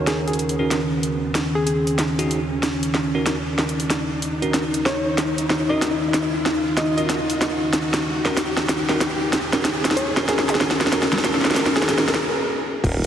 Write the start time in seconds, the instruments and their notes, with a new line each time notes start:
Already playing: analog synth pad D#3 C#4 F#5, tine electric piano C#4 D#4 F#4 A#4, riser
0.07 synth pluck G#4, snare, closed hi-hat
0.28 synth pluck G#4, closed hi-hat
0.33 closed hi-hat
0.39 closed hi-hat
0.49 closed hi-hat
0.59 tine electric piano C#4 D#4 F#4 A#4
0.71 snare, closed hi-hat
1.03 closed hi-hat
1.35 snare, closed hi-hat
1.55 synth pluck G#4
1.66 synth pluck G#4, closed hi-hat
1.87 closed hi-hat
1.99 snare, closed hi-hat
2.19 tine electric piano C#4 D#4 F#4 G#4, closed hi-hat
2.31 closed hi-hat
2.62 analog synth pad D#4, snare, closed hi-hat
2.83 closed hi-hat
2.94 snare
3.15 tine electric piano C#4 D#4 F#4 A#4
3.26 snare, closed hi-hat
3.58 snare, closed hi-hat
3.69 closed hi-hat
3.80 closed hi-hat
3.90 snare, closed hi-hat
4.22 closed hi-hat
4.42 tine electric piano C#4 D#4 F#4 A#4, closed hi-hat
4.54 snare, closed hi-hat
4.74 closed hi-hat
4.86 synth pluck C#5, snare
5.18 snare, closed hi-hat
5.38 closed hi-hat
5.50 snare
5.69 tine electric piano C#4 D#4 F#4 A#4, synth pluck D#5
5.82 snare, closed hi-hat
6.14 snare, closed hi-hat
6.46 snare
6.77 synth pluck D#5, snare, closed hi-hat
6.97 tine electric piano C#4 D#4 F#4 A#4, synth pluck D#5, closed hi-hat
7.10 snare, closed hi-hat
7.30 closed hi-hat
7.41 snare, closed hi-hat
7.73 snare, closed hi-hat
7.94 snare, closed hi-hat
8.25 tine electric piano C#4 D#4 F#4 A#4, snare
8.37 snare, closed hi-hat
8.57 snare
8.69 snare, closed hi-hat
8.89 tine electric piano C#4 D#4 F#4 A#4, snare
9.01 snare, closed hi-hat
9.33 snare, closed hi-hat
9.53 tine electric piano C#4 D#4 F#4 A#4, snare, closed hi-hat
9.65 snare, closed hi-hat
9.85 snare, closed hi-hat
9.91 snare
9.96 synth pluck C#5, closed hi-hat
10.17 tine electric piano C#4 D#4 F#4 A#4, snare
10.29 tine electric piano C#4 D#4 F#4 A#4, synth pluck G#4, snare, closed hi-hat
10.39 snare
10.48 synth pluck G#4, snare, closed hi-hat
10.55 snare
10.60 tine electric piano C#4 D#4 F#4 A#4, snare
10.71 snare
10.81 snare, closed hi-hat
10.87 snare
10.92 tine electric piano C#4 D#4 F#4 A#4, snare, closed hi-hat
11.03 snare
11.12 snare
11.18 snare
11.24 tine electric piano C#4 D#4 F#4 A#4, snare, closed hi-hat
11.35 snare
11.41 snare
11.45 snare
11.47 snare
11.51 snare
11.54 snare
11.56 tine electric piano C#4 D#4 F#4 A#4, snare, closed hi-hat
11.60 snare
11.66 snare
11.76 synth pluck G#4, snare
11.82 snare
11.88 tine electric piano C#4 D#4 F#4 A#4, synth pluck G#4, snare, closed hi-hat
11.98 snare
12.08 snare, closed hi-hat
12.14 snare
12.84 wobble bass D#1, tine electric piano C#4 D#4 F#4 A#4, analog synth pad D#4 F#5, kick, closed hi-hat, crash, sub drop